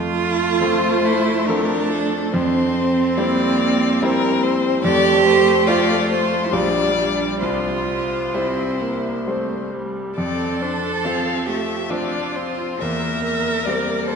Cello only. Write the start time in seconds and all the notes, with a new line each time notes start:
Already playing: F4
1.05 E4
1.47 D4
2.34 C4
3.19 A#3
4.83 G4
5.67 F4
6.44 E4
6.51 D4
7.39 F4
8.34 E4
10.17 A4
11.46 G4
11.90 F4
12.80 A#4
14.07 A4